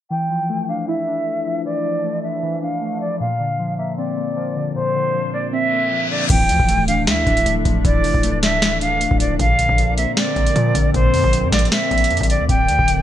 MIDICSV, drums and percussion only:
0, 0, Header, 1, 2, 480
1, 0, Start_track
1, 0, Key_signature, -1, "minor"
1, 0, Tempo, 387097
1, 130, Time_signature, 4, 2, 24, 8
1, 16146, End_track
2, 0, Start_track
2, 0, Title_t, "Drums"
2, 7810, Note_on_c, 9, 36, 110
2, 7810, Note_on_c, 9, 42, 65
2, 7810, Note_on_c, 9, 49, 92
2, 7934, Note_off_c, 9, 36, 0
2, 7934, Note_off_c, 9, 42, 0
2, 7934, Note_off_c, 9, 49, 0
2, 8049, Note_on_c, 9, 42, 69
2, 8173, Note_off_c, 9, 42, 0
2, 8177, Note_on_c, 9, 36, 85
2, 8290, Note_on_c, 9, 42, 75
2, 8301, Note_off_c, 9, 36, 0
2, 8414, Note_off_c, 9, 42, 0
2, 8531, Note_on_c, 9, 42, 70
2, 8655, Note_off_c, 9, 42, 0
2, 8770, Note_on_c, 9, 38, 110
2, 8770, Note_on_c, 9, 42, 71
2, 8894, Note_off_c, 9, 38, 0
2, 8894, Note_off_c, 9, 42, 0
2, 9009, Note_on_c, 9, 36, 92
2, 9010, Note_on_c, 9, 42, 44
2, 9133, Note_off_c, 9, 36, 0
2, 9134, Note_off_c, 9, 42, 0
2, 9137, Note_on_c, 9, 42, 71
2, 9252, Note_off_c, 9, 42, 0
2, 9252, Note_on_c, 9, 42, 82
2, 9376, Note_off_c, 9, 42, 0
2, 9490, Note_on_c, 9, 36, 91
2, 9490, Note_on_c, 9, 42, 81
2, 9614, Note_off_c, 9, 36, 0
2, 9614, Note_off_c, 9, 42, 0
2, 9730, Note_on_c, 9, 36, 111
2, 9730, Note_on_c, 9, 42, 65
2, 9854, Note_off_c, 9, 36, 0
2, 9854, Note_off_c, 9, 42, 0
2, 9969, Note_on_c, 9, 46, 76
2, 10093, Note_off_c, 9, 46, 0
2, 10097, Note_on_c, 9, 36, 82
2, 10209, Note_on_c, 9, 42, 78
2, 10221, Note_off_c, 9, 36, 0
2, 10333, Note_off_c, 9, 42, 0
2, 10450, Note_on_c, 9, 42, 68
2, 10451, Note_on_c, 9, 38, 90
2, 10574, Note_off_c, 9, 42, 0
2, 10575, Note_off_c, 9, 38, 0
2, 10689, Note_on_c, 9, 42, 68
2, 10690, Note_on_c, 9, 38, 107
2, 10813, Note_off_c, 9, 42, 0
2, 10814, Note_off_c, 9, 38, 0
2, 10928, Note_on_c, 9, 42, 68
2, 11052, Note_off_c, 9, 42, 0
2, 11171, Note_on_c, 9, 42, 82
2, 11295, Note_off_c, 9, 42, 0
2, 11297, Note_on_c, 9, 36, 96
2, 11409, Note_on_c, 9, 42, 79
2, 11421, Note_off_c, 9, 36, 0
2, 11533, Note_off_c, 9, 42, 0
2, 11649, Note_on_c, 9, 36, 112
2, 11649, Note_on_c, 9, 42, 65
2, 11773, Note_off_c, 9, 36, 0
2, 11773, Note_off_c, 9, 42, 0
2, 11889, Note_on_c, 9, 42, 71
2, 12013, Note_off_c, 9, 42, 0
2, 12017, Note_on_c, 9, 36, 85
2, 12129, Note_on_c, 9, 42, 75
2, 12141, Note_off_c, 9, 36, 0
2, 12253, Note_off_c, 9, 42, 0
2, 12370, Note_on_c, 9, 42, 71
2, 12494, Note_off_c, 9, 42, 0
2, 12610, Note_on_c, 9, 38, 107
2, 12610, Note_on_c, 9, 42, 70
2, 12734, Note_off_c, 9, 38, 0
2, 12734, Note_off_c, 9, 42, 0
2, 12849, Note_on_c, 9, 36, 90
2, 12849, Note_on_c, 9, 42, 41
2, 12973, Note_off_c, 9, 36, 0
2, 12973, Note_off_c, 9, 42, 0
2, 12977, Note_on_c, 9, 42, 72
2, 13091, Note_off_c, 9, 42, 0
2, 13091, Note_on_c, 9, 42, 81
2, 13215, Note_off_c, 9, 42, 0
2, 13329, Note_on_c, 9, 36, 88
2, 13330, Note_on_c, 9, 42, 82
2, 13453, Note_off_c, 9, 36, 0
2, 13454, Note_off_c, 9, 42, 0
2, 13570, Note_on_c, 9, 36, 112
2, 13570, Note_on_c, 9, 42, 64
2, 13694, Note_off_c, 9, 36, 0
2, 13694, Note_off_c, 9, 42, 0
2, 13809, Note_on_c, 9, 46, 74
2, 13933, Note_off_c, 9, 46, 0
2, 13937, Note_on_c, 9, 36, 82
2, 14049, Note_on_c, 9, 42, 80
2, 14061, Note_off_c, 9, 36, 0
2, 14173, Note_off_c, 9, 42, 0
2, 14289, Note_on_c, 9, 36, 90
2, 14290, Note_on_c, 9, 42, 58
2, 14291, Note_on_c, 9, 38, 88
2, 14370, Note_off_c, 9, 42, 0
2, 14370, Note_on_c, 9, 42, 58
2, 14413, Note_off_c, 9, 36, 0
2, 14415, Note_off_c, 9, 38, 0
2, 14450, Note_off_c, 9, 42, 0
2, 14450, Note_on_c, 9, 42, 60
2, 14530, Note_off_c, 9, 42, 0
2, 14530, Note_on_c, 9, 38, 112
2, 14530, Note_on_c, 9, 42, 70
2, 14654, Note_off_c, 9, 38, 0
2, 14654, Note_off_c, 9, 42, 0
2, 14769, Note_on_c, 9, 36, 86
2, 14770, Note_on_c, 9, 42, 41
2, 14850, Note_off_c, 9, 42, 0
2, 14850, Note_on_c, 9, 42, 56
2, 14893, Note_off_c, 9, 36, 0
2, 14930, Note_off_c, 9, 42, 0
2, 14930, Note_on_c, 9, 42, 69
2, 15010, Note_off_c, 9, 42, 0
2, 15010, Note_on_c, 9, 42, 51
2, 15090, Note_off_c, 9, 42, 0
2, 15090, Note_on_c, 9, 42, 70
2, 15137, Note_on_c, 9, 36, 94
2, 15170, Note_off_c, 9, 42, 0
2, 15170, Note_on_c, 9, 42, 83
2, 15250, Note_off_c, 9, 42, 0
2, 15250, Note_on_c, 9, 42, 81
2, 15261, Note_off_c, 9, 36, 0
2, 15374, Note_off_c, 9, 42, 0
2, 15489, Note_on_c, 9, 36, 110
2, 15490, Note_on_c, 9, 42, 63
2, 15613, Note_off_c, 9, 36, 0
2, 15614, Note_off_c, 9, 42, 0
2, 15729, Note_on_c, 9, 42, 67
2, 15853, Note_off_c, 9, 42, 0
2, 15857, Note_on_c, 9, 36, 84
2, 15970, Note_on_c, 9, 42, 80
2, 15981, Note_off_c, 9, 36, 0
2, 16094, Note_off_c, 9, 42, 0
2, 16146, End_track
0, 0, End_of_file